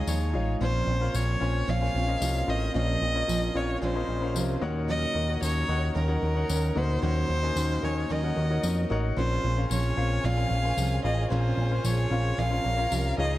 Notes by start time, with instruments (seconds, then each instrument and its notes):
Already playing: grand piano G#2 D#4 F4 G#4 C#5 D#5 F5 G#5, violin section G#4 G#5, violin D#5
0.07 analog synth bass D#2, steel-string acoustic guitar F3 G#3 D#4 F4, violin C#5, tambourine
0.33 analog synth bass A1, steel-string acoustic guitar G#3 D#4 F4, grand piano D#4 F4 G#4 C#5 F5
0.60 analog synth bass A#1, steel-string acoustic guitar A#2 F3 C4 C#4 F4, grand piano A#2 F3 C#4 F4 A#4 C5 F5, violin C5
0.87 analog synth bass A#1, steel-string acoustic guitar C4 C#4 F4
1.00 grand piano C#4 F4 A#4 C5 F5
1.14 analog synth bass A#1, steel-string acoustic guitar F3 C4 C#4 F4, violin C#5, tambourine
1.40 analog synth bass A#1, steel-string acoustic guitar C4 C#4 F4, grand piano C#4 F4 A#4 C5 G#5
1.67 analog synth bass A#1, steel-string acoustic guitar A#2 F3 C4 C#4 F4, violin F5
1.80 grand piano C#4 F4 A#4 C5 G#5
1.94 analog synth bass A#1, steel-string acoustic guitar C4 C#4 F4
2.07 grand piano C#4 F4 A#4 C5 D#5
2.20 analog synth bass C2, steel-string acoustic guitar F3 C4 C#4 F4, tambourine
2.47 analog synth bass A1, steel-string acoustic guitar C4 C#4 F4, grand piano C#4 F4 A#4 C5 F5, violin D#5
2.74 analog synth bass A#1, steel-string acoustic guitar A#2 F3 C4 C#4 F4, grand piano A#2 F3 C#4 F4 A#4 C5 F5, violin D#5
3.01 analog synth bass A#1, steel-string acoustic guitar C4 C#4 F4
3.14 grand piano C#4 F4 A#4 C5 D#5
3.28 analog synth bass A#1, steel-string acoustic guitar F3 C4 C#4 F4, tambourine
3.54 analog synth bass A#1, steel-string acoustic guitar C4 C#4 F4, grand piano C#4 F4 A#4 C5 F5, violin C#5
3.82 analog synth bass A#1, steel-string acoustic guitar A#2 F3 C4 C#4 F4, violin C5
3.94 grand piano C#4 F4 A#4 C5 D#5
4.08 analog synth bass A#1, steel-string acoustic guitar C4 C#4 F4
4.21 grand piano C#4 F4 A#4 C5 F5
4.35 analog synth bass C2, steel-string acoustic guitar F3 C4 C#4 F4, tambourine
4.61 analog synth bass D#2, grand piano A#2 D#4 F#4 A#4 C#5 F#5, steel-string acoustic guitar C#4 D#4 A#4
4.88 steel-string acoustic guitar D#3 F#3 C#4 D#4 A#4, violin D#5
5.14 analog synth bass D#2, steel-string acoustic guitar C#4 D#4 A#4
5.28 grand piano D#4 F#4 A#4 C#5 F#5
5.41 analog synth bass D#2, steel-string acoustic guitar F#3 C#4 D#4 A#4, violin C#5, tambourine
5.68 analog synth bass D#2, steel-string acoustic guitar C#4 D#4 A#4, grand piano D#4 F#4 A#4 C#5 F#5
5.95 analog synth bass D#2, steel-string acoustic guitar D#3 F#3 C#4 D#4 A#4, violin A#4
6.08 grand piano D#4 F#4 A#4 C#5 F#5
6.22 analog synth bass D#2, steel-string acoustic guitar C#4 D#4 A#4
6.35 grand piano D#4 F#4 A#4 C#5 F#5
6.48 analog synth bass D#2, steel-string acoustic guitar F#3 C#4 D#4 A#4, tambourine
6.75 analog synth bass D2, grand piano A#2 D#4 F#4 A#4 C#5 F#5, steel-string acoustic guitar C#4 D#4 A#4, violin C5
7.02 analog synth bass D#2, steel-string acoustic guitar D#3 F#3 C#4 D#4 A#4, grand piano C#4 D#4 F#4 A#4 F#5, violin C5
7.29 analog synth bass D#2, steel-string acoustic guitar C#4 D#4 A#4
7.42 grand piano C#4 D#4 F#4 A#4 G#5
7.55 analog synth bass D#2, steel-string acoustic guitar F#3 C#4 D#4 A#4, tambourine
7.82 analog synth bass D#2, steel-string acoustic guitar C#4 D#4 A#4, grand piano D#4 F#4 A#4 C#5 G#5, violin C#5
8.09 analog synth bass D#2, steel-string acoustic guitar D#3 F#3 C#4 D#4 A#4, violin D#5
8.23 grand piano D#4 F#4 A#4 C#5 F#5
8.36 analog synth bass D#2, steel-string acoustic guitar C#4 D#4 A#4
8.50 grand piano D#4 F#4 A#4 C#5 F#5
8.63 analog synth bass F2, steel-string acoustic guitar F#3 C#4 D#4 A#4, tambourine
8.90 analog synth bass A1, steel-string acoustic guitar C#4 D#4 A#4, grand piano D#4 F#4 A#4 C#5 F#5
9.17 analog synth bass A#1, steel-string acoustic guitar A#2 F3 C4 C#4 F4, grand piano C#4 F4 A#4 C5 F5, violin section G#4 G#5, violin C5
9.43 analog synth bass A#1, steel-string acoustic guitar C4 C#4 F4
9.56 grand piano C#4 F4 A#4 C5 F5
9.70 analog synth bass A#1, steel-string acoustic guitar F3 C4 C#4 F4, violin C#5, tambourine
9.96 analog synth bass A#1, steel-string acoustic guitar C4 C#4 F4, grand piano C#4 F4 A#4 C5 F5
10.24 analog synth bass A#1, steel-string acoustic guitar A#2 F3 C4 C#4 F4, violin F5
10.36 grand piano C#4 F4 A#4 C5 F5
10.50 analog synth bass A#1, steel-string acoustic guitar C4 C#4 F4
10.63 grand piano C#4 F4 A#4 C5 G#5
10.76 analog synth bass C2, steel-string acoustic guitar F3 C4 C#4 F4, tambourine
11.03 analog synth bass A1, steel-string acoustic guitar C4 C#4 F4, grand piano C#4 F4 A#4 C5 F5, violin D#5
11.30 analog synth bass A#1, steel-string acoustic guitar A#2 F3 C4 C#4 F4, grand piano C#4 F4 A#4 C5 F5, violin C5
11.57 analog synth bass A#1, steel-string acoustic guitar C4 C#4 F4
11.70 grand piano C#4 F4 A#4 C5 F5
11.84 analog synth bass A#1, steel-string acoustic guitar F3 C4 C#4 F4, violin C#5, tambourine
12.10 analog synth bass A#1, steel-string acoustic guitar C4 C#4 F4, grand piano C#4 F4 A#4 C5 F5
12.37 analog synth bass A#1, steel-string acoustic guitar A#2 F3 C4 C#4 F4, violin F5
12.50 grand piano C#4 F4 A#4 C5 F5
12.65 analog synth bass A#1, steel-string acoustic guitar C#4, violin section A#4 A#5
12.77 grand piano C#4 F4 A#4 C5 F5
12.90 analog synth bass C2, steel-string acoustic guitar F3 C4 C#4 F4, tambourine
13.17 analog synth bass C#2, grand piano G#2 D#4 F4 G#4 C#5 F5, steel-string acoustic guitar G#3 D#4 F4, violin section G#4 G#5, violin D#5